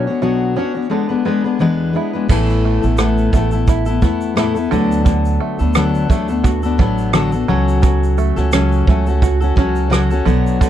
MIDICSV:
0, 0, Header, 1, 5, 480
1, 0, Start_track
1, 0, Key_signature, 3, "major"
1, 0, Tempo, 691962
1, 1594, Time_signature, 4, 2, 24, 8
1, 7420, End_track
2, 0, Start_track
2, 0, Title_t, "Steel-string acoustic guitar"
2, 0, Program_c, 0, 25
2, 49, Note_on_c, 0, 73, 44
2, 54, Note_on_c, 0, 66, 42
2, 60, Note_on_c, 0, 62, 42
2, 69, Note_on_c, 0, 59, 38
2, 147, Note_off_c, 0, 59, 0
2, 149, Note_off_c, 0, 62, 0
2, 151, Note_on_c, 0, 47, 75
2, 153, Note_on_c, 0, 54, 64
2, 154, Note_off_c, 0, 66, 0
2, 154, Note_off_c, 0, 73, 0
2, 156, Note_on_c, 0, 59, 67
2, 158, Note_on_c, 0, 62, 72
2, 162, Note_on_c, 0, 73, 78
2, 163, Note_on_c, 0, 66, 73
2, 379, Note_off_c, 0, 59, 0
2, 385, Note_off_c, 0, 62, 0
2, 388, Note_on_c, 0, 59, 56
2, 392, Note_off_c, 0, 47, 0
2, 393, Note_on_c, 0, 62, 62
2, 394, Note_off_c, 0, 54, 0
2, 394, Note_off_c, 0, 66, 0
2, 398, Note_off_c, 0, 73, 0
2, 402, Note_on_c, 0, 66, 68
2, 408, Note_on_c, 0, 73, 68
2, 509, Note_off_c, 0, 73, 0
2, 512, Note_off_c, 0, 66, 0
2, 517, Note_on_c, 0, 73, 44
2, 520, Note_on_c, 0, 66, 45
2, 521, Note_off_c, 0, 62, 0
2, 523, Note_off_c, 0, 59, 0
2, 530, Note_on_c, 0, 62, 37
2, 534, Note_on_c, 0, 59, 35
2, 618, Note_off_c, 0, 59, 0
2, 621, Note_off_c, 0, 62, 0
2, 621, Note_on_c, 0, 56, 56
2, 629, Note_off_c, 0, 73, 0
2, 630, Note_off_c, 0, 66, 0
2, 630, Note_on_c, 0, 62, 55
2, 633, Note_on_c, 0, 59, 54
2, 642, Note_on_c, 0, 71, 63
2, 746, Note_off_c, 0, 71, 0
2, 752, Note_off_c, 0, 59, 0
2, 754, Note_on_c, 0, 71, 54
2, 757, Note_off_c, 0, 62, 0
2, 759, Note_off_c, 0, 56, 0
2, 761, Note_on_c, 0, 59, 48
2, 765, Note_on_c, 0, 62, 41
2, 775, Note_on_c, 0, 56, 40
2, 859, Note_off_c, 0, 56, 0
2, 866, Note_off_c, 0, 62, 0
2, 868, Note_off_c, 0, 71, 0
2, 868, Note_on_c, 0, 56, 63
2, 871, Note_off_c, 0, 59, 0
2, 875, Note_on_c, 0, 62, 61
2, 883, Note_on_c, 0, 59, 58
2, 888, Note_on_c, 0, 71, 65
2, 991, Note_off_c, 0, 71, 0
2, 999, Note_on_c, 0, 71, 49
2, 1000, Note_off_c, 0, 59, 0
2, 1003, Note_off_c, 0, 56, 0
2, 1004, Note_off_c, 0, 62, 0
2, 1009, Note_on_c, 0, 59, 44
2, 1012, Note_on_c, 0, 62, 43
2, 1018, Note_on_c, 0, 56, 38
2, 1103, Note_off_c, 0, 56, 0
2, 1104, Note_on_c, 0, 40, 72
2, 1107, Note_off_c, 0, 62, 0
2, 1109, Note_off_c, 0, 59, 0
2, 1109, Note_on_c, 0, 52, 74
2, 1111, Note_off_c, 0, 71, 0
2, 1112, Note_on_c, 0, 56, 68
2, 1115, Note_on_c, 0, 62, 74
2, 1117, Note_on_c, 0, 59, 75
2, 1120, Note_on_c, 0, 71, 89
2, 1333, Note_off_c, 0, 56, 0
2, 1342, Note_on_c, 0, 56, 51
2, 1343, Note_off_c, 0, 62, 0
2, 1348, Note_off_c, 0, 59, 0
2, 1349, Note_off_c, 0, 40, 0
2, 1351, Note_off_c, 0, 52, 0
2, 1351, Note_on_c, 0, 62, 50
2, 1353, Note_off_c, 0, 71, 0
2, 1356, Note_on_c, 0, 59, 56
2, 1362, Note_on_c, 0, 71, 56
2, 1471, Note_off_c, 0, 71, 0
2, 1479, Note_off_c, 0, 59, 0
2, 1479, Note_on_c, 0, 71, 50
2, 1480, Note_off_c, 0, 56, 0
2, 1484, Note_off_c, 0, 62, 0
2, 1487, Note_on_c, 0, 59, 46
2, 1493, Note_on_c, 0, 62, 42
2, 1499, Note_on_c, 0, 56, 44
2, 1585, Note_on_c, 0, 45, 76
2, 1586, Note_off_c, 0, 59, 0
2, 1590, Note_off_c, 0, 56, 0
2, 1590, Note_off_c, 0, 71, 0
2, 1591, Note_off_c, 0, 62, 0
2, 1593, Note_on_c, 0, 57, 68
2, 1594, Note_on_c, 0, 59, 80
2, 1598, Note_on_c, 0, 64, 79
2, 1602, Note_on_c, 0, 69, 90
2, 1946, Note_off_c, 0, 69, 0
2, 1955, Note_on_c, 0, 69, 50
2, 1958, Note_off_c, 0, 64, 0
2, 1962, Note_off_c, 0, 45, 0
2, 1966, Note_off_c, 0, 57, 0
2, 1966, Note_off_c, 0, 59, 0
2, 1966, Note_on_c, 0, 64, 42
2, 1974, Note_on_c, 0, 59, 40
2, 2066, Note_off_c, 0, 59, 0
2, 2066, Note_on_c, 0, 45, 68
2, 2068, Note_off_c, 0, 69, 0
2, 2069, Note_off_c, 0, 64, 0
2, 2072, Note_on_c, 0, 57, 73
2, 2074, Note_on_c, 0, 59, 71
2, 2077, Note_on_c, 0, 64, 66
2, 2080, Note_on_c, 0, 69, 79
2, 2299, Note_off_c, 0, 57, 0
2, 2306, Note_off_c, 0, 59, 0
2, 2307, Note_on_c, 0, 57, 68
2, 2310, Note_off_c, 0, 45, 0
2, 2310, Note_off_c, 0, 64, 0
2, 2314, Note_on_c, 0, 59, 66
2, 2317, Note_off_c, 0, 69, 0
2, 2319, Note_on_c, 0, 64, 62
2, 2327, Note_on_c, 0, 69, 71
2, 2435, Note_off_c, 0, 69, 0
2, 2442, Note_off_c, 0, 57, 0
2, 2443, Note_on_c, 0, 69, 45
2, 2446, Note_off_c, 0, 59, 0
2, 2448, Note_off_c, 0, 64, 0
2, 2455, Note_on_c, 0, 64, 40
2, 2463, Note_on_c, 0, 59, 37
2, 2669, Note_off_c, 0, 69, 0
2, 2678, Note_on_c, 0, 69, 55
2, 2684, Note_off_c, 0, 64, 0
2, 2693, Note_on_c, 0, 64, 51
2, 2694, Note_off_c, 0, 59, 0
2, 2704, Note_on_c, 0, 59, 48
2, 2781, Note_off_c, 0, 59, 0
2, 2786, Note_on_c, 0, 57, 62
2, 2789, Note_on_c, 0, 59, 65
2, 2790, Note_off_c, 0, 64, 0
2, 2790, Note_off_c, 0, 69, 0
2, 2799, Note_on_c, 0, 64, 62
2, 2804, Note_on_c, 0, 69, 63
2, 3021, Note_off_c, 0, 57, 0
2, 3022, Note_on_c, 0, 45, 75
2, 3024, Note_off_c, 0, 59, 0
2, 3028, Note_off_c, 0, 64, 0
2, 3029, Note_on_c, 0, 57, 87
2, 3030, Note_off_c, 0, 69, 0
2, 3032, Note_on_c, 0, 59, 70
2, 3037, Note_on_c, 0, 64, 85
2, 3039, Note_on_c, 0, 69, 86
2, 3144, Note_off_c, 0, 69, 0
2, 3152, Note_on_c, 0, 69, 59
2, 3157, Note_off_c, 0, 64, 0
2, 3160, Note_off_c, 0, 45, 0
2, 3163, Note_off_c, 0, 57, 0
2, 3165, Note_off_c, 0, 59, 0
2, 3166, Note_on_c, 0, 64, 47
2, 3172, Note_on_c, 0, 59, 44
2, 3267, Note_off_c, 0, 69, 0
2, 3271, Note_on_c, 0, 50, 63
2, 3271, Note_on_c, 0, 54, 61
2, 3273, Note_off_c, 0, 59, 0
2, 3274, Note_off_c, 0, 64, 0
2, 3277, Note_on_c, 0, 62, 71
2, 3282, Note_on_c, 0, 59, 78
2, 3284, Note_on_c, 0, 69, 80
2, 3875, Note_off_c, 0, 69, 0
2, 3878, Note_on_c, 0, 69, 51
2, 3880, Note_off_c, 0, 59, 0
2, 3885, Note_off_c, 0, 50, 0
2, 3888, Note_off_c, 0, 62, 0
2, 3888, Note_on_c, 0, 59, 48
2, 3899, Note_on_c, 0, 62, 42
2, 3988, Note_off_c, 0, 62, 0
2, 3990, Note_off_c, 0, 54, 0
2, 3990, Note_off_c, 0, 59, 0
2, 3990, Note_off_c, 0, 69, 0
2, 3990, Note_on_c, 0, 50, 64
2, 3993, Note_on_c, 0, 54, 66
2, 3997, Note_on_c, 0, 62, 84
2, 3998, Note_on_c, 0, 59, 78
2, 4004, Note_on_c, 0, 69, 82
2, 4216, Note_off_c, 0, 54, 0
2, 4224, Note_on_c, 0, 54, 65
2, 4226, Note_off_c, 0, 62, 0
2, 4231, Note_off_c, 0, 59, 0
2, 4232, Note_off_c, 0, 50, 0
2, 4234, Note_on_c, 0, 62, 69
2, 4236, Note_off_c, 0, 69, 0
2, 4239, Note_on_c, 0, 59, 64
2, 4245, Note_on_c, 0, 69, 64
2, 4353, Note_off_c, 0, 69, 0
2, 4361, Note_off_c, 0, 54, 0
2, 4362, Note_on_c, 0, 69, 52
2, 4364, Note_off_c, 0, 59, 0
2, 4366, Note_off_c, 0, 62, 0
2, 4372, Note_on_c, 0, 59, 47
2, 4384, Note_on_c, 0, 62, 45
2, 4590, Note_off_c, 0, 69, 0
2, 4599, Note_on_c, 0, 69, 55
2, 4604, Note_off_c, 0, 59, 0
2, 4611, Note_off_c, 0, 62, 0
2, 4613, Note_on_c, 0, 59, 50
2, 4619, Note_on_c, 0, 62, 49
2, 4704, Note_off_c, 0, 62, 0
2, 4704, Note_on_c, 0, 54, 58
2, 4711, Note_off_c, 0, 69, 0
2, 4712, Note_off_c, 0, 59, 0
2, 4713, Note_on_c, 0, 62, 63
2, 4720, Note_on_c, 0, 59, 64
2, 4726, Note_on_c, 0, 69, 64
2, 4942, Note_off_c, 0, 54, 0
2, 4945, Note_off_c, 0, 62, 0
2, 4948, Note_on_c, 0, 50, 72
2, 4949, Note_off_c, 0, 59, 0
2, 4950, Note_off_c, 0, 69, 0
2, 4950, Note_on_c, 0, 54, 92
2, 4953, Note_on_c, 0, 62, 83
2, 4958, Note_on_c, 0, 59, 87
2, 4959, Note_on_c, 0, 69, 100
2, 5069, Note_off_c, 0, 69, 0
2, 5078, Note_on_c, 0, 69, 59
2, 5082, Note_off_c, 0, 59, 0
2, 5083, Note_off_c, 0, 50, 0
2, 5084, Note_off_c, 0, 54, 0
2, 5086, Note_off_c, 0, 62, 0
2, 5090, Note_on_c, 0, 59, 51
2, 5099, Note_on_c, 0, 62, 49
2, 5190, Note_off_c, 0, 69, 0
2, 5190, Note_on_c, 0, 49, 59
2, 5191, Note_on_c, 0, 54, 78
2, 5193, Note_off_c, 0, 59, 0
2, 5194, Note_off_c, 0, 62, 0
2, 5196, Note_on_c, 0, 66, 83
2, 5197, Note_on_c, 0, 61, 80
2, 5203, Note_on_c, 0, 69, 81
2, 5793, Note_off_c, 0, 69, 0
2, 5801, Note_on_c, 0, 69, 58
2, 5804, Note_off_c, 0, 49, 0
2, 5808, Note_off_c, 0, 66, 0
2, 5811, Note_on_c, 0, 66, 45
2, 5821, Note_off_c, 0, 61, 0
2, 5824, Note_on_c, 0, 61, 46
2, 5910, Note_off_c, 0, 61, 0
2, 5912, Note_off_c, 0, 69, 0
2, 5913, Note_on_c, 0, 49, 74
2, 5914, Note_off_c, 0, 54, 0
2, 5914, Note_off_c, 0, 66, 0
2, 5917, Note_on_c, 0, 54, 82
2, 5919, Note_on_c, 0, 61, 85
2, 5923, Note_on_c, 0, 66, 71
2, 5926, Note_on_c, 0, 69, 80
2, 6145, Note_off_c, 0, 54, 0
2, 6153, Note_off_c, 0, 61, 0
2, 6153, Note_on_c, 0, 54, 63
2, 6154, Note_off_c, 0, 49, 0
2, 6159, Note_off_c, 0, 66, 0
2, 6160, Note_off_c, 0, 69, 0
2, 6161, Note_on_c, 0, 61, 64
2, 6168, Note_on_c, 0, 66, 68
2, 6176, Note_on_c, 0, 69, 76
2, 6282, Note_off_c, 0, 69, 0
2, 6286, Note_off_c, 0, 54, 0
2, 6290, Note_off_c, 0, 61, 0
2, 6291, Note_on_c, 0, 69, 43
2, 6294, Note_off_c, 0, 66, 0
2, 6302, Note_on_c, 0, 66, 50
2, 6312, Note_on_c, 0, 61, 42
2, 6515, Note_off_c, 0, 69, 0
2, 6524, Note_on_c, 0, 69, 60
2, 6528, Note_off_c, 0, 66, 0
2, 6536, Note_on_c, 0, 66, 49
2, 6537, Note_off_c, 0, 61, 0
2, 6545, Note_on_c, 0, 61, 51
2, 6630, Note_off_c, 0, 61, 0
2, 6630, Note_on_c, 0, 54, 71
2, 6633, Note_off_c, 0, 69, 0
2, 6638, Note_on_c, 0, 61, 61
2, 6640, Note_off_c, 0, 66, 0
2, 6648, Note_on_c, 0, 66, 75
2, 6652, Note_on_c, 0, 69, 75
2, 6861, Note_off_c, 0, 54, 0
2, 6865, Note_on_c, 0, 49, 73
2, 6868, Note_off_c, 0, 61, 0
2, 6870, Note_on_c, 0, 54, 82
2, 6872, Note_off_c, 0, 66, 0
2, 6873, Note_off_c, 0, 69, 0
2, 6876, Note_on_c, 0, 61, 75
2, 6880, Note_on_c, 0, 66, 83
2, 6882, Note_on_c, 0, 69, 84
2, 7002, Note_off_c, 0, 49, 0
2, 7002, Note_off_c, 0, 69, 0
2, 7004, Note_off_c, 0, 54, 0
2, 7007, Note_off_c, 0, 61, 0
2, 7010, Note_off_c, 0, 66, 0
2, 7010, Note_on_c, 0, 69, 63
2, 7021, Note_on_c, 0, 66, 58
2, 7030, Note_on_c, 0, 61, 57
2, 7112, Note_on_c, 0, 47, 64
2, 7116, Note_off_c, 0, 66, 0
2, 7117, Note_off_c, 0, 69, 0
2, 7117, Note_on_c, 0, 59, 77
2, 7118, Note_on_c, 0, 54, 70
2, 7122, Note_off_c, 0, 61, 0
2, 7124, Note_on_c, 0, 66, 80
2, 7125, Note_on_c, 0, 62, 74
2, 7129, Note_on_c, 0, 73, 84
2, 7420, Note_off_c, 0, 47, 0
2, 7420, Note_off_c, 0, 54, 0
2, 7420, Note_off_c, 0, 59, 0
2, 7420, Note_off_c, 0, 62, 0
2, 7420, Note_off_c, 0, 66, 0
2, 7420, Note_off_c, 0, 73, 0
2, 7420, End_track
3, 0, Start_track
3, 0, Title_t, "Five-string banjo"
3, 0, Program_c, 1, 105
3, 0, Note_on_c, 1, 50, 56
3, 0, Note_on_c, 1, 61, 52
3, 152, Note_on_c, 1, 66, 53
3, 383, Note_off_c, 1, 61, 0
3, 392, Note_on_c, 1, 61, 53
3, 623, Note_off_c, 1, 50, 0
3, 632, Note_on_c, 1, 50, 62
3, 685, Note_off_c, 1, 61, 0
3, 686, Note_off_c, 1, 66, 0
3, 871, Note_on_c, 1, 59, 56
3, 1114, Note_on_c, 1, 56, 47
3, 1359, Note_on_c, 1, 64, 54
3, 1594, Note_off_c, 1, 50, 0
3, 1597, Note_on_c, 1, 52, 56
3, 1647, Note_off_c, 1, 56, 0
3, 1838, Note_on_c, 1, 57, 56
3, 1859, Note_off_c, 1, 59, 0
3, 2077, Note_on_c, 1, 59, 48
3, 2313, Note_off_c, 1, 57, 0
3, 2316, Note_on_c, 1, 57, 49
3, 2331, Note_off_c, 1, 64, 0
3, 2560, Note_on_c, 1, 64, 54
3, 2787, Note_off_c, 1, 59, 0
3, 2790, Note_on_c, 1, 59, 55
3, 3024, Note_off_c, 1, 64, 0
3, 3032, Note_on_c, 1, 64, 54
3, 3264, Note_off_c, 1, 52, 0
3, 3267, Note_on_c, 1, 50, 74
3, 3326, Note_off_c, 1, 64, 0
3, 3328, Note_off_c, 1, 57, 0
3, 3495, Note_off_c, 1, 50, 0
3, 3504, Note_on_c, 1, 50, 61
3, 3749, Note_on_c, 1, 57, 49
3, 3770, Note_off_c, 1, 59, 0
3, 3988, Note_on_c, 1, 59, 56
3, 4226, Note_off_c, 1, 57, 0
3, 4229, Note_on_c, 1, 57, 62
3, 4464, Note_on_c, 1, 66, 58
3, 4701, Note_off_c, 1, 59, 0
3, 4710, Note_on_c, 1, 59, 58
3, 4946, Note_off_c, 1, 66, 0
3, 4949, Note_on_c, 1, 66, 56
3, 5188, Note_off_c, 1, 50, 0
3, 5191, Note_on_c, 1, 54, 67
3, 5244, Note_off_c, 1, 57, 0
3, 5245, Note_off_c, 1, 59, 0
3, 5425, Note_off_c, 1, 54, 0
3, 5428, Note_on_c, 1, 54, 61
3, 5674, Note_on_c, 1, 57, 62
3, 5920, Note_off_c, 1, 66, 0
3, 5920, Note_on_c, 1, 61, 57
3, 6154, Note_off_c, 1, 57, 0
3, 6164, Note_on_c, 1, 57, 55
3, 6401, Note_on_c, 1, 66, 65
3, 6641, Note_off_c, 1, 57, 0
3, 6644, Note_off_c, 1, 61, 0
3, 6644, Note_on_c, 1, 61, 64
3, 6876, Note_off_c, 1, 66, 0
3, 6876, Note_on_c, 1, 66, 65
3, 7110, Note_off_c, 1, 54, 0
3, 7113, Note_on_c, 1, 50, 78
3, 7350, Note_off_c, 1, 50, 0
3, 7358, Note_on_c, 1, 50, 73
3, 7379, Note_off_c, 1, 61, 0
3, 7420, Note_off_c, 1, 50, 0
3, 7420, Note_off_c, 1, 66, 0
3, 7420, End_track
4, 0, Start_track
4, 0, Title_t, "Upright bass"
4, 0, Program_c, 2, 32
4, 1591, Note_on_c, 2, 33, 84
4, 1936, Note_off_c, 2, 33, 0
4, 1968, Note_on_c, 2, 33, 89
4, 2287, Note_off_c, 2, 33, 0
4, 2310, Note_on_c, 2, 33, 85
4, 2764, Note_off_c, 2, 33, 0
4, 2791, Note_on_c, 2, 40, 70
4, 3245, Note_off_c, 2, 40, 0
4, 3273, Note_on_c, 2, 38, 104
4, 3726, Note_off_c, 2, 38, 0
4, 3887, Note_on_c, 2, 38, 85
4, 4207, Note_off_c, 2, 38, 0
4, 4231, Note_on_c, 2, 38, 82
4, 4685, Note_off_c, 2, 38, 0
4, 4713, Note_on_c, 2, 33, 75
4, 5166, Note_off_c, 2, 33, 0
4, 5195, Note_on_c, 2, 37, 91
4, 5779, Note_off_c, 2, 37, 0
4, 5808, Note_on_c, 2, 37, 92
4, 6127, Note_off_c, 2, 37, 0
4, 6154, Note_on_c, 2, 37, 88
4, 6607, Note_off_c, 2, 37, 0
4, 6637, Note_on_c, 2, 37, 74
4, 7088, Note_off_c, 2, 37, 0
4, 7118, Note_on_c, 2, 35, 91
4, 7420, Note_off_c, 2, 35, 0
4, 7420, End_track
5, 0, Start_track
5, 0, Title_t, "Drums"
5, 1592, Note_on_c, 9, 36, 90
5, 1594, Note_on_c, 9, 49, 89
5, 1661, Note_off_c, 9, 36, 0
5, 1663, Note_off_c, 9, 49, 0
5, 1731, Note_on_c, 9, 82, 38
5, 1801, Note_off_c, 9, 82, 0
5, 1963, Note_on_c, 9, 82, 45
5, 2032, Note_off_c, 9, 82, 0
5, 2062, Note_on_c, 9, 82, 68
5, 2070, Note_on_c, 9, 37, 90
5, 2131, Note_off_c, 9, 82, 0
5, 2140, Note_off_c, 9, 37, 0
5, 2203, Note_on_c, 9, 82, 39
5, 2273, Note_off_c, 9, 82, 0
5, 2309, Note_on_c, 9, 36, 75
5, 2312, Note_on_c, 9, 82, 49
5, 2379, Note_off_c, 9, 36, 0
5, 2382, Note_off_c, 9, 82, 0
5, 2436, Note_on_c, 9, 82, 48
5, 2506, Note_off_c, 9, 82, 0
5, 2549, Note_on_c, 9, 82, 66
5, 2550, Note_on_c, 9, 36, 89
5, 2619, Note_off_c, 9, 36, 0
5, 2619, Note_off_c, 9, 82, 0
5, 2675, Note_on_c, 9, 82, 51
5, 2744, Note_off_c, 9, 82, 0
5, 2786, Note_on_c, 9, 82, 47
5, 2790, Note_on_c, 9, 36, 79
5, 2856, Note_off_c, 9, 82, 0
5, 2859, Note_off_c, 9, 36, 0
5, 2921, Note_on_c, 9, 82, 54
5, 2991, Note_off_c, 9, 82, 0
5, 3031, Note_on_c, 9, 37, 94
5, 3031, Note_on_c, 9, 82, 52
5, 3100, Note_off_c, 9, 37, 0
5, 3101, Note_off_c, 9, 82, 0
5, 3163, Note_on_c, 9, 82, 43
5, 3233, Note_off_c, 9, 82, 0
5, 3275, Note_on_c, 9, 82, 45
5, 3345, Note_off_c, 9, 82, 0
5, 3411, Note_on_c, 9, 82, 54
5, 3480, Note_off_c, 9, 82, 0
5, 3508, Note_on_c, 9, 82, 73
5, 3509, Note_on_c, 9, 36, 92
5, 3577, Note_off_c, 9, 82, 0
5, 3579, Note_off_c, 9, 36, 0
5, 3643, Note_on_c, 9, 82, 46
5, 3713, Note_off_c, 9, 82, 0
5, 3879, Note_on_c, 9, 82, 43
5, 3948, Note_off_c, 9, 82, 0
5, 3981, Note_on_c, 9, 82, 66
5, 3989, Note_on_c, 9, 37, 95
5, 4050, Note_off_c, 9, 82, 0
5, 4059, Note_off_c, 9, 37, 0
5, 4123, Note_on_c, 9, 82, 38
5, 4193, Note_off_c, 9, 82, 0
5, 4230, Note_on_c, 9, 36, 80
5, 4236, Note_on_c, 9, 82, 47
5, 4299, Note_off_c, 9, 36, 0
5, 4305, Note_off_c, 9, 82, 0
5, 4358, Note_on_c, 9, 82, 51
5, 4427, Note_off_c, 9, 82, 0
5, 4469, Note_on_c, 9, 36, 86
5, 4472, Note_on_c, 9, 82, 63
5, 4539, Note_off_c, 9, 36, 0
5, 4541, Note_off_c, 9, 82, 0
5, 4598, Note_on_c, 9, 82, 46
5, 4667, Note_off_c, 9, 82, 0
5, 4711, Note_on_c, 9, 36, 83
5, 4780, Note_off_c, 9, 36, 0
5, 4843, Note_on_c, 9, 82, 52
5, 4913, Note_off_c, 9, 82, 0
5, 4948, Note_on_c, 9, 37, 94
5, 4949, Note_on_c, 9, 82, 54
5, 5017, Note_off_c, 9, 37, 0
5, 5018, Note_off_c, 9, 82, 0
5, 5079, Note_on_c, 9, 82, 45
5, 5148, Note_off_c, 9, 82, 0
5, 5330, Note_on_c, 9, 82, 51
5, 5399, Note_off_c, 9, 82, 0
5, 5429, Note_on_c, 9, 82, 72
5, 5432, Note_on_c, 9, 36, 102
5, 5499, Note_off_c, 9, 82, 0
5, 5502, Note_off_c, 9, 36, 0
5, 5573, Note_on_c, 9, 82, 50
5, 5643, Note_off_c, 9, 82, 0
5, 5675, Note_on_c, 9, 82, 65
5, 5744, Note_off_c, 9, 82, 0
5, 5805, Note_on_c, 9, 82, 42
5, 5807, Note_on_c, 9, 37, 30
5, 5875, Note_off_c, 9, 82, 0
5, 5877, Note_off_c, 9, 37, 0
5, 5908, Note_on_c, 9, 82, 74
5, 5917, Note_on_c, 9, 37, 94
5, 5978, Note_off_c, 9, 82, 0
5, 5986, Note_off_c, 9, 37, 0
5, 6049, Note_on_c, 9, 82, 43
5, 6119, Note_off_c, 9, 82, 0
5, 6156, Note_on_c, 9, 36, 77
5, 6225, Note_off_c, 9, 36, 0
5, 6288, Note_on_c, 9, 82, 53
5, 6358, Note_off_c, 9, 82, 0
5, 6396, Note_on_c, 9, 36, 82
5, 6401, Note_on_c, 9, 82, 72
5, 6466, Note_off_c, 9, 36, 0
5, 6471, Note_off_c, 9, 82, 0
5, 6529, Note_on_c, 9, 82, 48
5, 6598, Note_off_c, 9, 82, 0
5, 6638, Note_on_c, 9, 36, 88
5, 6707, Note_off_c, 9, 36, 0
5, 6768, Note_on_c, 9, 82, 47
5, 6837, Note_off_c, 9, 82, 0
5, 6885, Note_on_c, 9, 37, 86
5, 6886, Note_on_c, 9, 82, 51
5, 6954, Note_off_c, 9, 37, 0
5, 6955, Note_off_c, 9, 82, 0
5, 7011, Note_on_c, 9, 82, 48
5, 7080, Note_off_c, 9, 82, 0
5, 7129, Note_on_c, 9, 82, 43
5, 7198, Note_off_c, 9, 82, 0
5, 7262, Note_on_c, 9, 82, 52
5, 7331, Note_off_c, 9, 82, 0
5, 7361, Note_on_c, 9, 36, 101
5, 7365, Note_on_c, 9, 82, 77
5, 7420, Note_off_c, 9, 36, 0
5, 7420, Note_off_c, 9, 82, 0
5, 7420, End_track
0, 0, End_of_file